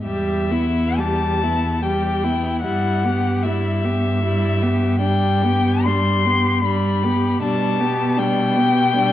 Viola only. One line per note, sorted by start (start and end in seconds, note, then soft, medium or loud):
0.05 0.52 G3 soft
0.51 0.99 B3 soft
0.98 1.44 G3 soft
1.43 1.84 B3 soft
1.84 2.26 G3 soft
2.24 2.64 B3 soft
2.64 3.06 G3 soft
3.04 3.47 B3 soft
3.46 3.86 G3 soft
3.85 4.23 B3 soft
4.24 4.64 G3 soft
4.63 5.01 B3 soft
5.02 5.46 G3 soft
5.44 5.89 B3 soft
5.87 6.27 G3 soft
6.26 6.64 B3 soft
6.65 7.06 G3 soft
7.04 7.42 B3 soft
7.42 7.82 G3 soft
7.80 8.20 B3 soft
8.19 8.59 G3 soft
8.57 8.96 B3 soft
8.96 9.12 G3 soft